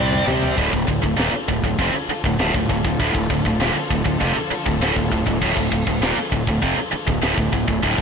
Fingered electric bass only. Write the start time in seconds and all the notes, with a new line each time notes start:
Already playing: C2
0.27 C3
0.58 D1
0.73 D1
0.88 D1
1.03 D1
1.18 D#1
1.33 muted fingered electric bass stroke
1.48 D1
1.63 D1
1.78 F1
1.94 muted fingered electric bass stroke
2.09 muted fingered electric bass stroke
2.24 D1
2.40 D1
2.54 D1
2.69 D1
2.84 D1
2.99 D1
3.15 D1
3.30 D1
3.45 D1
3.60 D#1
3.75 muted fingered electric bass stroke
3.90 D1
4.05 D1
4.21 F1
4.36 muted fingered electric bass stroke
4.51 muted fingered electric bass stroke
4.66 D1
4.80 D1
4.96 D1
5.12 D1
5.27 D1
5.42 D1
5.57 D1
5.72 D1
5.87 D1
6.01 D#1
6.17 muted fingered electric bass stroke
6.32 D1
6.47 D1
6.62 F1
6.78 muted fingered electric bass stroke
6.93 muted fingered electric bass stroke
7.07 D1
7.23 D1
7.38 D1
7.53 D1
7.68 D1
7.83 D1
7.98 D1